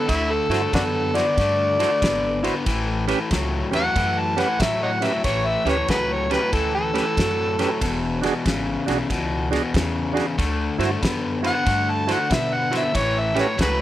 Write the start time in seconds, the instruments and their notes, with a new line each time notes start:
Already playing: harmonica A4
0.08 upright bass D2, overdriven electric guitar D3 A3, harmonica E4, kick, snare, ride
0.33 harmonica A4
0.49 upright bass G2, overdriven electric guitar D3 A3, tonewheel organ E4 F#4 C5, snare, ride
0.72 upright bass F#2, overdriven electric guitar D3 B3, harmonica D4 F#4 A4, kick, snare, ride
1.15 overdriven electric guitar D3 B3, tonewheel organ E4 F#4 C5, harmonica D5, snare, ride
1.37 upright bass G2, overdriven electric guitar D3 A3, kick, snare, ride
1.79 overdriven electric guitar D3 A3, tonewheel organ E4 F#4 C5, snare, ride
2.02 upright bass G#1, overdriven electric guitar D3 B3, kick, snare, ride
2.43 overdriven electric guitar D3 B3, tonewheel organ E4 F#4 C5, snare, ride
2.66 upright bass A1, overdriven electric guitar A2 E3, kick, snare, ride
3.08 overdriven electric guitar A2 E3, tonewheel organ C#4 G4 B4, snare, ride
3.31 upright bass C#2, overdriven electric guitar A2 F#3, kick, snare, ride
3.71 upright bass E2, overdriven electric guitar A2 F#3, tonewheel organ C#4 G4 B4, snare, ride
3.76 harmonica F#5
3.96 upright bass F#2, overdriven electric guitar A2 E3, kick, snare, ride
4.19 harmonica A5
4.36 overdriven electric guitar A2 E3, tonewheel organ C#4 G4 B4, harmonica F#5, snare, ride
4.59 upright bass A2, overdriven electric guitar A2 F#3, harmonica E5, kick, snare, ride
4.83 harmonica C#5 D#5 F#5
5.01 overdriven electric guitar A2 F#3, tonewheel organ C#4 G4 B4, harmonica E5, snare, ride
5.24 upright bass A1, overdriven electric guitar A2 E3, harmonica C#5, kick, snare, ride
5.46 harmonica E5
5.65 upright bass D2, overdriven electric guitar A2 E3, tonewheel organ C#4 G4 B4, harmonica C#5, snare, ride
5.88 upright bass C#2, overdriven electric guitar A2 F#3, harmonica F#4 G#4 B4, kick, snare, ride
6.12 harmonica C#5
6.30 overdriven electric guitar A2 F#3, tonewheel organ C#4 G4 B4, harmonica B4, snare, ride
6.52 upright bass D2, overdriven electric guitar A2 E3, harmonica A4, kick, snare, ride
6.75 harmonica A4
6.93 overdriven electric guitar A2 E3, tonewheel organ C#4 G4 B4, snare, ride
7.17 upright bass F#2, overdriven electric guitar A2 F#3, kick, snare, ride
7.59 overdriven electric guitar A2 F#3, tonewheel organ C#4 G4 B4, snare, ride
7.81 upright bass E1, overdriven electric guitar E2 B2, kick, snare, ride
8.22 overdriven electric guitar E2 B2, tonewheel organ D4 F#4 G#4, snare, ride
8.45 upright bass G#1, overdriven electric guitar E2 C#3, kick, snare, ride
8.86 upright bass B1, overdriven electric guitar E2 C#3, tonewheel organ D4 F#4 G#4, snare, ride
9.10 upright bass C#2, overdriven electric guitar E2 B2, kick, snare, ride
9.51 overdriven electric guitar E2 B2, tonewheel organ D4 F#4 G#4, snare, ride
9.74 upright bass E2, overdriven electric guitar E2 C#3, kick, snare, ride
10.13 overdriven electric guitar E2 C#3, tonewheel organ D4 F#4 G#4, ride
10.19 snare
10.38 upright bass D2, overdriven electric guitar D3 A3, kick, snare, ride
10.78 upright bass G2, overdriven electric guitar D3 A3, tonewheel organ E4 F#4 C5, snare, ride
11.02 overdriven electric guitar D3 B3, kick, snare, ride
11.42 overdriven electric guitar D3 B3, tonewheel organ E4 F#4 C5, snare, ride
11.47 harmonica F#5
11.65 upright bass G2, overdriven electric guitar D3 A3, kick, snare, ride
11.90 harmonica A5
12.07 overdriven electric guitar D3 A3, tonewheel organ E4 F#4 C5, snare, ride
12.12 harmonica F#5
12.30 upright bass B2, overdriven electric guitar D3 B3, harmonica E5, kick, snare, ride
12.54 harmonica F#5
12.71 overdriven electric guitar D3 B3, tonewheel organ E4 F#4 C5, snare, ride
12.77 harmonica E5
12.94 upright bass A1, overdriven electric guitar A2 E3, harmonica C#5, kick, snare, ride
13.19 harmonica E5
13.34 overdriven electric guitar A2 E3, tonewheel organ C#4 G4 B4, ride
13.38 harmonica F#4 A4 C#5, snare
13.57 upright bass C#2, overdriven electric guitar A2 F#3, harmonica F#4 G#4 B4, kick, snare, ride